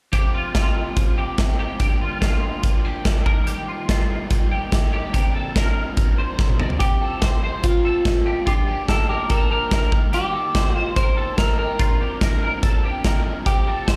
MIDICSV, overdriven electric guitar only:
0, 0, Header, 1, 2, 480
1, 0, Start_track
1, 0, Tempo, 416667
1, 150, Time_signature, 4, 2, 24, 8
1, 16084, End_track
2, 0, Start_track
2, 0, Title_t, "Overdriven electric guitar"
2, 0, Program_c, 0, 29
2, 141, Note_on_c, 0, 53, 69
2, 148, Note_on_c, 0, 60, 77
2, 156, Note_on_c, 0, 65, 75
2, 162, Note_on_c, 0, 67, 73
2, 613, Note_off_c, 0, 53, 0
2, 616, Note_off_c, 0, 60, 0
2, 618, Note_on_c, 0, 53, 53
2, 630, Note_on_c, 0, 60, 51
2, 634, Note_off_c, 0, 65, 0
2, 639, Note_on_c, 0, 65, 60
2, 643, Note_off_c, 0, 67, 0
2, 648, Note_on_c, 0, 67, 58
2, 1101, Note_off_c, 0, 60, 0
2, 1102, Note_off_c, 0, 53, 0
2, 1106, Note_on_c, 0, 53, 52
2, 1115, Note_on_c, 0, 60, 55
2, 1120, Note_off_c, 0, 65, 0
2, 1125, Note_on_c, 0, 65, 56
2, 1129, Note_off_c, 0, 67, 0
2, 1133, Note_on_c, 0, 67, 57
2, 1572, Note_off_c, 0, 53, 0
2, 1583, Note_off_c, 0, 60, 0
2, 1586, Note_on_c, 0, 53, 51
2, 1593, Note_off_c, 0, 65, 0
2, 1596, Note_on_c, 0, 60, 57
2, 1607, Note_on_c, 0, 65, 59
2, 1611, Note_off_c, 0, 67, 0
2, 1615, Note_on_c, 0, 67, 59
2, 2065, Note_off_c, 0, 53, 0
2, 2070, Note_on_c, 0, 43, 72
2, 2074, Note_on_c, 0, 50, 68
2, 2075, Note_off_c, 0, 60, 0
2, 2077, Note_off_c, 0, 65, 0
2, 2079, Note_on_c, 0, 53, 76
2, 2082, Note_on_c, 0, 58, 79
2, 2082, Note_on_c, 0, 62, 67
2, 2084, Note_off_c, 0, 67, 0
2, 2088, Note_on_c, 0, 67, 74
2, 2536, Note_off_c, 0, 53, 0
2, 2549, Note_on_c, 0, 53, 55
2, 2552, Note_off_c, 0, 43, 0
2, 2553, Note_off_c, 0, 58, 0
2, 2554, Note_off_c, 0, 50, 0
2, 2555, Note_off_c, 0, 62, 0
2, 2558, Note_on_c, 0, 58, 56
2, 2569, Note_on_c, 0, 62, 59
2, 2570, Note_off_c, 0, 67, 0
2, 2574, Note_on_c, 0, 67, 58
2, 3016, Note_off_c, 0, 53, 0
2, 3029, Note_on_c, 0, 53, 57
2, 3034, Note_off_c, 0, 58, 0
2, 3034, Note_off_c, 0, 62, 0
2, 3039, Note_on_c, 0, 58, 62
2, 3048, Note_on_c, 0, 62, 58
2, 3053, Note_off_c, 0, 67, 0
2, 3057, Note_on_c, 0, 67, 61
2, 3497, Note_off_c, 0, 53, 0
2, 3511, Note_on_c, 0, 53, 56
2, 3521, Note_off_c, 0, 58, 0
2, 3522, Note_off_c, 0, 62, 0
2, 3525, Note_on_c, 0, 58, 52
2, 3535, Note_on_c, 0, 62, 53
2, 3540, Note_off_c, 0, 67, 0
2, 3545, Note_on_c, 0, 67, 59
2, 3745, Note_off_c, 0, 67, 0
2, 3753, Note_off_c, 0, 53, 0
2, 3756, Note_off_c, 0, 58, 0
2, 3759, Note_on_c, 0, 67, 61
2, 3761, Note_off_c, 0, 62, 0
2, 3766, Note_on_c, 0, 63, 56
2, 3770, Note_on_c, 0, 58, 49
2, 3776, Note_on_c, 0, 55, 51
2, 3781, Note_on_c, 0, 51, 51
2, 4454, Note_off_c, 0, 55, 0
2, 4468, Note_on_c, 0, 55, 61
2, 4474, Note_off_c, 0, 58, 0
2, 4476, Note_off_c, 0, 63, 0
2, 4478, Note_off_c, 0, 67, 0
2, 4478, Note_on_c, 0, 58, 53
2, 4489, Note_off_c, 0, 51, 0
2, 4490, Note_on_c, 0, 63, 58
2, 4499, Note_on_c, 0, 67, 58
2, 4939, Note_off_c, 0, 55, 0
2, 4953, Note_on_c, 0, 55, 56
2, 4958, Note_off_c, 0, 63, 0
2, 4960, Note_off_c, 0, 58, 0
2, 4965, Note_on_c, 0, 58, 55
2, 4968, Note_off_c, 0, 67, 0
2, 4972, Note_on_c, 0, 63, 60
2, 4982, Note_on_c, 0, 67, 60
2, 5412, Note_off_c, 0, 55, 0
2, 5426, Note_on_c, 0, 55, 58
2, 5434, Note_off_c, 0, 63, 0
2, 5435, Note_off_c, 0, 58, 0
2, 5440, Note_on_c, 0, 58, 58
2, 5443, Note_off_c, 0, 67, 0
2, 5448, Note_on_c, 0, 63, 61
2, 5457, Note_on_c, 0, 67, 65
2, 5912, Note_off_c, 0, 55, 0
2, 5916, Note_on_c, 0, 46, 76
2, 5919, Note_off_c, 0, 58, 0
2, 5919, Note_on_c, 0, 50, 70
2, 5922, Note_off_c, 0, 63, 0
2, 5924, Note_on_c, 0, 53, 73
2, 5927, Note_off_c, 0, 67, 0
2, 5927, Note_on_c, 0, 60, 84
2, 5928, Note_on_c, 0, 62, 80
2, 5936, Note_on_c, 0, 70, 85
2, 6389, Note_off_c, 0, 53, 0
2, 6393, Note_on_c, 0, 53, 56
2, 6397, Note_off_c, 0, 46, 0
2, 6398, Note_off_c, 0, 50, 0
2, 6402, Note_off_c, 0, 60, 0
2, 6403, Note_off_c, 0, 62, 0
2, 6406, Note_off_c, 0, 70, 0
2, 6406, Note_on_c, 0, 60, 51
2, 6415, Note_on_c, 0, 62, 63
2, 6424, Note_on_c, 0, 70, 65
2, 6870, Note_off_c, 0, 53, 0
2, 6874, Note_on_c, 0, 53, 64
2, 6878, Note_off_c, 0, 62, 0
2, 6879, Note_off_c, 0, 60, 0
2, 6884, Note_on_c, 0, 60, 59
2, 6890, Note_off_c, 0, 70, 0
2, 6892, Note_on_c, 0, 62, 58
2, 6903, Note_on_c, 0, 70, 57
2, 7344, Note_off_c, 0, 53, 0
2, 7348, Note_on_c, 0, 53, 61
2, 7353, Note_off_c, 0, 62, 0
2, 7354, Note_off_c, 0, 60, 0
2, 7359, Note_on_c, 0, 60, 57
2, 7363, Note_off_c, 0, 70, 0
2, 7367, Note_on_c, 0, 62, 55
2, 7377, Note_on_c, 0, 70, 63
2, 7831, Note_off_c, 0, 53, 0
2, 7831, Note_off_c, 0, 60, 0
2, 7836, Note_on_c, 0, 53, 71
2, 7841, Note_off_c, 0, 62, 0
2, 7845, Note_on_c, 0, 60, 70
2, 7847, Note_off_c, 0, 70, 0
2, 7850, Note_on_c, 0, 65, 66
2, 7855, Note_on_c, 0, 67, 68
2, 8053, Note_off_c, 0, 67, 0
2, 8066, Note_off_c, 0, 65, 0
2, 8066, Note_on_c, 0, 67, 47
2, 8076, Note_off_c, 0, 53, 0
2, 8080, Note_on_c, 0, 65, 40
2, 8081, Note_off_c, 0, 60, 0
2, 8097, Note_on_c, 0, 60, 36
2, 8302, Note_off_c, 0, 60, 0
2, 8306, Note_on_c, 0, 53, 70
2, 8311, Note_off_c, 0, 65, 0
2, 8311, Note_off_c, 0, 67, 0
2, 8316, Note_on_c, 0, 60, 78
2, 8324, Note_on_c, 0, 65, 72
2, 8325, Note_on_c, 0, 67, 84
2, 8526, Note_off_c, 0, 67, 0
2, 8539, Note_on_c, 0, 67, 53
2, 8543, Note_off_c, 0, 65, 0
2, 8551, Note_off_c, 0, 53, 0
2, 8556, Note_off_c, 0, 60, 0
2, 8557, Note_on_c, 0, 65, 43
2, 8569, Note_on_c, 0, 60, 41
2, 8771, Note_off_c, 0, 60, 0
2, 8774, Note_on_c, 0, 53, 53
2, 8781, Note_off_c, 0, 65, 0
2, 8785, Note_on_c, 0, 60, 51
2, 8787, Note_off_c, 0, 67, 0
2, 8795, Note_on_c, 0, 65, 60
2, 8805, Note_on_c, 0, 67, 56
2, 9002, Note_off_c, 0, 67, 0
2, 9016, Note_on_c, 0, 67, 46
2, 9021, Note_off_c, 0, 65, 0
2, 9025, Note_off_c, 0, 53, 0
2, 9030, Note_off_c, 0, 60, 0
2, 9035, Note_on_c, 0, 65, 43
2, 9047, Note_on_c, 0, 60, 42
2, 9261, Note_off_c, 0, 60, 0
2, 9266, Note_off_c, 0, 67, 0
2, 9268, Note_on_c, 0, 53, 68
2, 9269, Note_off_c, 0, 65, 0
2, 9275, Note_on_c, 0, 60, 65
2, 9283, Note_on_c, 0, 65, 73
2, 9288, Note_on_c, 0, 67, 70
2, 9493, Note_off_c, 0, 67, 0
2, 9507, Note_on_c, 0, 67, 46
2, 9511, Note_off_c, 0, 53, 0
2, 9511, Note_off_c, 0, 65, 0
2, 9514, Note_off_c, 0, 60, 0
2, 9524, Note_on_c, 0, 65, 49
2, 9533, Note_on_c, 0, 60, 40
2, 9749, Note_on_c, 0, 43, 64
2, 9751, Note_off_c, 0, 67, 0
2, 9757, Note_on_c, 0, 50, 70
2, 9758, Note_off_c, 0, 60, 0
2, 9759, Note_off_c, 0, 65, 0
2, 9762, Note_on_c, 0, 53, 71
2, 9763, Note_on_c, 0, 58, 70
2, 9768, Note_on_c, 0, 62, 75
2, 9769, Note_on_c, 0, 67, 74
2, 9980, Note_off_c, 0, 67, 0
2, 9990, Note_off_c, 0, 62, 0
2, 9991, Note_off_c, 0, 43, 0
2, 9994, Note_on_c, 0, 67, 47
2, 9996, Note_off_c, 0, 50, 0
2, 9998, Note_off_c, 0, 53, 0
2, 9998, Note_off_c, 0, 58, 0
2, 10004, Note_on_c, 0, 62, 44
2, 10012, Note_on_c, 0, 58, 38
2, 10023, Note_on_c, 0, 53, 39
2, 10227, Note_off_c, 0, 53, 0
2, 10230, Note_off_c, 0, 58, 0
2, 10232, Note_off_c, 0, 62, 0
2, 10232, Note_on_c, 0, 43, 76
2, 10234, Note_off_c, 0, 67, 0
2, 10236, Note_on_c, 0, 50, 66
2, 10241, Note_on_c, 0, 53, 69
2, 10243, Note_on_c, 0, 58, 80
2, 10246, Note_on_c, 0, 62, 72
2, 10249, Note_on_c, 0, 67, 79
2, 10462, Note_off_c, 0, 67, 0
2, 10470, Note_off_c, 0, 62, 0
2, 10473, Note_off_c, 0, 43, 0
2, 10474, Note_off_c, 0, 50, 0
2, 10476, Note_on_c, 0, 67, 47
2, 10477, Note_off_c, 0, 53, 0
2, 10478, Note_off_c, 0, 58, 0
2, 10483, Note_on_c, 0, 62, 47
2, 10496, Note_on_c, 0, 58, 44
2, 10508, Note_on_c, 0, 53, 37
2, 10691, Note_off_c, 0, 53, 0
2, 10704, Note_off_c, 0, 58, 0
2, 10705, Note_on_c, 0, 53, 51
2, 10714, Note_off_c, 0, 62, 0
2, 10714, Note_off_c, 0, 67, 0
2, 10718, Note_on_c, 0, 58, 56
2, 10728, Note_on_c, 0, 62, 55
2, 10736, Note_on_c, 0, 67, 55
2, 10929, Note_off_c, 0, 67, 0
2, 10937, Note_off_c, 0, 62, 0
2, 10943, Note_on_c, 0, 67, 47
2, 10945, Note_off_c, 0, 58, 0
2, 10949, Note_off_c, 0, 53, 0
2, 10950, Note_on_c, 0, 62, 44
2, 10959, Note_on_c, 0, 58, 41
2, 10970, Note_on_c, 0, 53, 42
2, 11180, Note_off_c, 0, 53, 0
2, 11183, Note_off_c, 0, 58, 0
2, 11183, Note_on_c, 0, 43, 57
2, 11187, Note_off_c, 0, 67, 0
2, 11189, Note_off_c, 0, 62, 0
2, 11191, Note_on_c, 0, 50, 76
2, 11193, Note_on_c, 0, 53, 68
2, 11197, Note_on_c, 0, 58, 76
2, 11202, Note_on_c, 0, 62, 75
2, 11205, Note_on_c, 0, 67, 73
2, 11407, Note_off_c, 0, 67, 0
2, 11421, Note_on_c, 0, 67, 41
2, 11427, Note_off_c, 0, 43, 0
2, 11431, Note_off_c, 0, 50, 0
2, 11433, Note_off_c, 0, 53, 0
2, 11434, Note_off_c, 0, 58, 0
2, 11436, Note_off_c, 0, 62, 0
2, 11441, Note_on_c, 0, 63, 40
2, 11453, Note_on_c, 0, 58, 40
2, 11654, Note_off_c, 0, 58, 0
2, 11658, Note_on_c, 0, 51, 70
2, 11666, Note_off_c, 0, 63, 0
2, 11666, Note_off_c, 0, 67, 0
2, 11667, Note_on_c, 0, 55, 70
2, 11668, Note_on_c, 0, 58, 74
2, 11679, Note_on_c, 0, 67, 80
2, 11680, Note_on_c, 0, 63, 73
2, 11894, Note_off_c, 0, 67, 0
2, 11905, Note_off_c, 0, 51, 0
2, 11907, Note_off_c, 0, 63, 0
2, 11908, Note_on_c, 0, 67, 43
2, 11909, Note_off_c, 0, 55, 0
2, 11909, Note_off_c, 0, 58, 0
2, 11921, Note_on_c, 0, 63, 40
2, 11938, Note_on_c, 0, 58, 33
2, 12139, Note_off_c, 0, 58, 0
2, 12146, Note_off_c, 0, 63, 0
2, 12147, Note_on_c, 0, 51, 74
2, 12149, Note_off_c, 0, 67, 0
2, 12151, Note_on_c, 0, 55, 74
2, 12153, Note_on_c, 0, 58, 85
2, 12160, Note_on_c, 0, 63, 74
2, 12162, Note_on_c, 0, 67, 75
2, 12366, Note_off_c, 0, 67, 0
2, 12379, Note_on_c, 0, 67, 51
2, 12385, Note_off_c, 0, 63, 0
2, 12389, Note_off_c, 0, 51, 0
2, 12391, Note_off_c, 0, 55, 0
2, 12391, Note_off_c, 0, 58, 0
2, 12399, Note_on_c, 0, 63, 48
2, 12407, Note_on_c, 0, 58, 43
2, 12620, Note_off_c, 0, 58, 0
2, 12622, Note_on_c, 0, 55, 54
2, 12625, Note_off_c, 0, 67, 0
2, 12628, Note_off_c, 0, 63, 0
2, 12634, Note_on_c, 0, 58, 55
2, 12641, Note_on_c, 0, 63, 61
2, 12648, Note_on_c, 0, 67, 55
2, 12853, Note_off_c, 0, 67, 0
2, 12866, Note_off_c, 0, 55, 0
2, 12867, Note_on_c, 0, 67, 50
2, 12868, Note_off_c, 0, 63, 0
2, 12872, Note_off_c, 0, 58, 0
2, 12882, Note_on_c, 0, 63, 44
2, 12893, Note_on_c, 0, 58, 41
2, 13094, Note_off_c, 0, 58, 0
2, 13100, Note_on_c, 0, 51, 70
2, 13103, Note_off_c, 0, 63, 0
2, 13107, Note_on_c, 0, 55, 66
2, 13108, Note_off_c, 0, 67, 0
2, 13108, Note_on_c, 0, 58, 74
2, 13117, Note_on_c, 0, 63, 76
2, 13121, Note_on_c, 0, 67, 66
2, 13323, Note_off_c, 0, 67, 0
2, 13336, Note_on_c, 0, 67, 45
2, 13337, Note_off_c, 0, 63, 0
2, 13345, Note_off_c, 0, 51, 0
2, 13348, Note_off_c, 0, 55, 0
2, 13349, Note_off_c, 0, 58, 0
2, 13351, Note_on_c, 0, 63, 39
2, 13362, Note_on_c, 0, 58, 35
2, 13579, Note_on_c, 0, 46, 68
2, 13583, Note_off_c, 0, 67, 0
2, 13585, Note_on_c, 0, 50, 71
2, 13588, Note_off_c, 0, 58, 0
2, 13589, Note_on_c, 0, 53, 68
2, 13590, Note_off_c, 0, 63, 0
2, 13593, Note_on_c, 0, 60, 74
2, 13598, Note_on_c, 0, 62, 72
2, 13598, Note_on_c, 0, 70, 80
2, 13813, Note_off_c, 0, 70, 0
2, 13824, Note_off_c, 0, 46, 0
2, 13825, Note_off_c, 0, 62, 0
2, 13827, Note_off_c, 0, 50, 0
2, 13827, Note_on_c, 0, 70, 50
2, 13829, Note_off_c, 0, 53, 0
2, 13831, Note_off_c, 0, 60, 0
2, 13839, Note_on_c, 0, 62, 43
2, 13849, Note_on_c, 0, 60, 40
2, 13858, Note_on_c, 0, 53, 39
2, 14064, Note_off_c, 0, 53, 0
2, 14067, Note_off_c, 0, 60, 0
2, 14067, Note_on_c, 0, 46, 79
2, 14068, Note_off_c, 0, 70, 0
2, 14072, Note_on_c, 0, 50, 81
2, 14074, Note_off_c, 0, 62, 0
2, 14078, Note_on_c, 0, 53, 89
2, 14081, Note_on_c, 0, 60, 85
2, 14087, Note_on_c, 0, 62, 94
2, 14090, Note_on_c, 0, 70, 94
2, 14287, Note_off_c, 0, 70, 0
2, 14298, Note_off_c, 0, 62, 0
2, 14301, Note_on_c, 0, 70, 55
2, 14305, Note_off_c, 0, 60, 0
2, 14308, Note_off_c, 0, 46, 0
2, 14310, Note_off_c, 0, 50, 0
2, 14312, Note_on_c, 0, 62, 47
2, 14313, Note_off_c, 0, 53, 0
2, 14318, Note_on_c, 0, 60, 43
2, 14326, Note_on_c, 0, 53, 44
2, 14522, Note_off_c, 0, 53, 0
2, 14535, Note_off_c, 0, 60, 0
2, 14536, Note_on_c, 0, 53, 54
2, 14545, Note_off_c, 0, 70, 0
2, 14547, Note_off_c, 0, 62, 0
2, 14549, Note_on_c, 0, 60, 60
2, 14560, Note_on_c, 0, 62, 65
2, 14564, Note_on_c, 0, 70, 63
2, 14768, Note_off_c, 0, 70, 0
2, 14782, Note_off_c, 0, 53, 0
2, 14782, Note_on_c, 0, 70, 48
2, 14786, Note_off_c, 0, 62, 0
2, 14789, Note_off_c, 0, 60, 0
2, 14800, Note_on_c, 0, 62, 45
2, 14808, Note_on_c, 0, 60, 52
2, 14814, Note_on_c, 0, 53, 47
2, 15021, Note_off_c, 0, 53, 0
2, 15025, Note_off_c, 0, 70, 0
2, 15026, Note_on_c, 0, 46, 72
2, 15028, Note_off_c, 0, 60, 0
2, 15030, Note_off_c, 0, 62, 0
2, 15030, Note_on_c, 0, 50, 76
2, 15035, Note_on_c, 0, 53, 76
2, 15042, Note_on_c, 0, 60, 71
2, 15044, Note_on_c, 0, 62, 83
2, 15046, Note_on_c, 0, 70, 81
2, 15245, Note_off_c, 0, 70, 0
2, 15255, Note_off_c, 0, 62, 0
2, 15258, Note_on_c, 0, 70, 48
2, 15265, Note_off_c, 0, 60, 0
2, 15267, Note_off_c, 0, 46, 0
2, 15269, Note_off_c, 0, 50, 0
2, 15269, Note_on_c, 0, 62, 50
2, 15271, Note_off_c, 0, 53, 0
2, 15279, Note_on_c, 0, 60, 46
2, 15290, Note_on_c, 0, 53, 38
2, 15482, Note_off_c, 0, 53, 0
2, 15490, Note_off_c, 0, 60, 0
2, 15496, Note_on_c, 0, 53, 70
2, 15503, Note_off_c, 0, 70, 0
2, 15503, Note_on_c, 0, 60, 74
2, 15508, Note_off_c, 0, 62, 0
2, 15514, Note_on_c, 0, 65, 69
2, 15519, Note_on_c, 0, 67, 71
2, 15722, Note_off_c, 0, 67, 0
2, 15736, Note_on_c, 0, 67, 48
2, 15742, Note_off_c, 0, 53, 0
2, 15742, Note_off_c, 0, 65, 0
2, 15746, Note_off_c, 0, 60, 0
2, 15756, Note_on_c, 0, 65, 41
2, 15766, Note_on_c, 0, 60, 33
2, 15963, Note_off_c, 0, 60, 0
2, 15971, Note_off_c, 0, 65, 0
2, 15971, Note_on_c, 0, 53, 71
2, 15975, Note_off_c, 0, 67, 0
2, 15977, Note_on_c, 0, 60, 70
2, 15985, Note_on_c, 0, 65, 75
2, 15989, Note_on_c, 0, 67, 85
2, 16084, Note_off_c, 0, 53, 0
2, 16084, Note_off_c, 0, 60, 0
2, 16084, Note_off_c, 0, 65, 0
2, 16084, Note_off_c, 0, 67, 0
2, 16084, End_track
0, 0, End_of_file